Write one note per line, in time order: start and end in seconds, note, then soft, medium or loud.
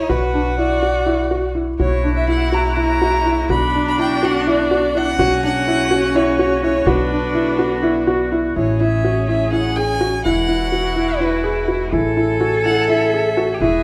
0.00 0.12 E4 medium
0.00 0.11 C#5 medium
0.09 1.76 B1 medium
0.09 0.24 F#4 medium
0.09 1.56 F#4 medium
0.09 0.57 B4 medium
0.34 0.48 D4 medium
0.58 0.72 E4 medium
0.58 1.51 D5 medium
0.82 0.97 F#4 medium
1.06 1.20 E4 medium
1.31 1.45 F#4 medium
1.55 1.69 E4 medium
1.79 3.46 B1 medium
1.79 3.48 C#3 medium
1.79 3.48 A#3 medium
1.79 3.51 E4 medium
1.79 3.48 F#4 medium
1.79 1.94 F#4 medium
1.79 2.13 C#5 medium
2.04 2.18 D4 medium
2.16 2.27 E5 medium
2.28 2.42 E4 medium
2.28 2.55 F#5 medium
2.52 2.67 F#4 medium
2.52 2.77 A#5 medium
2.77 2.91 E4 medium
2.77 3.46 A#5 loud
3.02 3.16 F#4 medium
3.26 3.40 E4 medium
3.49 5.15 B1 medium
3.49 5.17 D3 medium
3.49 5.17 B3 medium
3.49 5.17 D4 loud
3.49 3.64 F#4 medium
3.49 5.17 F#4 medium
3.49 3.84 B5 medium
3.74 3.88 D4 medium
3.87 3.98 B5 medium
3.98 4.12 E4 medium
3.98 4.26 G5 medium
4.23 4.37 F#4 medium
4.23 4.48 F#5 medium
4.47 4.61 E4 medium
4.47 4.99 D5 medium
4.71 4.85 F#4 medium
4.95 5.09 E4 medium
4.95 5.44 F#5 loud
5.18 6.83 B1 medium
5.18 6.85 C#3 medium
5.18 6.85 A#3 medium
5.18 6.87 C#4 medium
5.18 5.33 F#4 medium
5.18 6.85 F#4 medium
5.44 5.57 D4 medium
5.44 6.18 F#5 loud
5.67 5.81 E4 medium
5.91 6.05 F#4 medium
6.15 6.29 E4 medium
6.15 6.63 C#5 medium
6.39 6.53 F#4 medium
6.63 6.77 E4 medium
6.63 6.89 C#5 medium
6.86 8.53 B1 medium
6.86 8.54 D3 medium
6.86 8.54 B3 medium
6.86 8.31 D4 medium
6.86 8.55 F#4 medium
6.86 7.01 F#4 medium
6.86 8.32 B4 medium
7.11 7.25 D4 medium
7.35 7.48 E4 medium
7.59 7.73 F#4 medium
7.83 7.97 E4 medium
8.07 8.22 F#4 medium
8.32 8.46 E4 medium
8.56 10.21 A1 medium
8.56 10.08 C#3 medium
8.56 10.08 A3 medium
8.56 10.20 C#4 medium
8.56 8.70 E4 medium
8.56 10.08 G#4 medium
8.56 8.79 C#5 medium
8.81 8.95 E4 medium
8.81 9.25 E5 medium
9.04 9.18 F#4 medium
9.28 9.43 E4 medium
9.28 9.51 E5 medium
9.52 9.66 E4 medium
9.52 9.78 F#5 medium
9.76 9.91 G#4 medium
9.76 10.23 G#5 loud
10.01 10.15 F#4 medium
10.24 11.89 E1 medium
10.24 11.91 E3 medium
10.24 11.91 G#3 medium
10.24 11.94 E4 medium
10.24 10.39 E4 medium
10.24 11.91 F#4 medium
10.24 11.22 F#5 medium
10.48 10.62 E4 medium
10.72 10.86 F#4 medium
10.96 11.10 E4 medium
11.20 11.34 E4 medium
11.20 11.75 B4 medium
11.44 11.58 G#4 medium
11.68 11.82 F#4 medium
11.92 13.57 A1 medium
11.92 13.59 C#3 medium
11.92 13.59 A3 medium
11.92 12.06 E4 medium
11.92 13.56 A4 loud
11.92 13.59 G#5 medium
12.17 12.31 E4 medium
12.41 12.54 F#4 medium
12.65 12.79 E4 medium
12.65 12.87 F#5 medium
12.89 13.03 E4 medium
12.89 13.57 E5 medium
13.14 13.27 G#4 medium
13.37 13.51 F#4 medium
13.54 13.63 G4 medium
13.60 13.83 E1 medium
13.60 13.83 E3 medium
13.60 13.83 G#3 medium
13.60 13.75 E4 medium
13.60 13.83 F#4 medium
13.60 13.83 G#4 medium
13.60 13.83 E5 medium